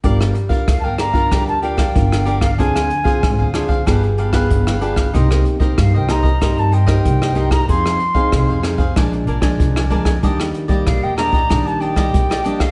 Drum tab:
HH |x-xxx-x-xxx-x-xx|x-x-x-x-xxxxx-x-|x-xxx-x-xxx-x-xx|x-x-x-x-xxx-x-x-|
SD |-r--r-r-r--r-r-r|-r--r-r-r--r-r-r|-r--r-r-r--r-r-r|-r--r-r-r--r-r-r|
BD |o--oo--oo--oo--o|o--oo--oo--oo--o|o--oo--oo--oo--o|o--oo--oo--oo--o|

HH |x-xxx-x-xxx-x-x-|
SD |-r--r-r-r--r-r-r|
BD |o--oo--oo--oo--o|